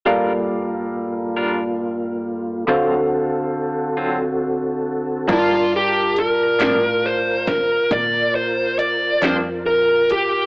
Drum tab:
CC |------------|x-----------|
HH |------------|x-xx-xx-xx-x|
SD |------------|---o-o---o--|
BD |------------|o----oo-----|